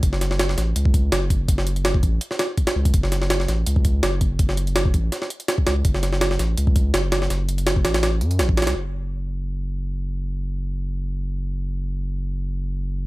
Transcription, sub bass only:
X:1
M:4/4
L:1/16
Q:1/4=165
K:F#m
V:1 name="Sub bass" clef=bass
F,,,6 A,,,2 C,,4 F,,,4 | F,,,6 A,,,2 z6 C,,2 | F,,,6 A,,,2 C,,4 F,,,4 | F,,,6 A,,,2 z6 C,,2 |
F,,,6 A,,,2 C,,4 F,,,4 | F,,,6 A,,,4 F,,2 A,,,3 C,, | F,,,16- | F,,,16- |
F,,,16 |]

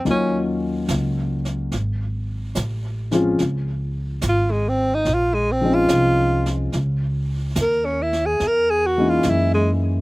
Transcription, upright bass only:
X:1
M:4/4
L:1/8
Q:"Swing" 1/4=72
K:C#dor
V:1 name="Upright bass" clef=bass
D,,2 C,,2 G,,,2 =A,,,2 | C,,2 G,,,2 A,,,2 ^B,,,2 | C,,2 D,,2 E,,2 F,,2 |]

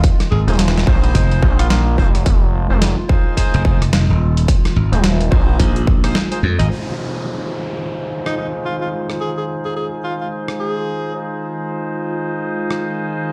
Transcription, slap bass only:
X:1
M:4/4
L:1/16
Q:"Swing 16ths" 1/4=108
K:Fm
V:1 name="Slap bass" clef=bass
z2 A,,, z4 z F,,,2 z6 | z8 z F,,,4 E,,,3 | z2 A,,, z4 z B,,,4 z2 F,, A,,, | z16 |
z16 | z16 |]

